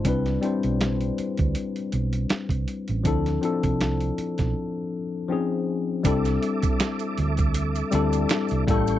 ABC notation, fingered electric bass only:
X:1
M:4/4
L:1/16
Q:"Swing 16ths" 1/4=80
K:C
V:1 name="Fingered electric bass" clef=bass
C,,2 z B,,,3 z D,, z2 B,,,2 z C,, z A,,, | D,,2 z C,,3 z B,,, z8 | C,,2 z4 D,,4 D,,2 z C,, A,,,2 |]